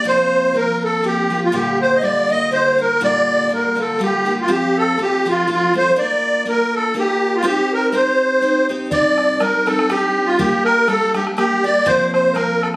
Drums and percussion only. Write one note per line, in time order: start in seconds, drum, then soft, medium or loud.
8.91 bodhran medium
9.18 bodhran soft
9.40 bodhran medium
9.67 bodhran medium
9.79 bodhran medium
9.90 bodhran medium
10.39 bodhran medium
10.66 bodhran medium
10.88 bodhran medium
11.15 bodhran medium
11.27 bodhran medium
11.38 bodhran medium
11.86 bodhran medium
12.14 bodhran soft
12.36 bodhran medium
12.63 bodhran medium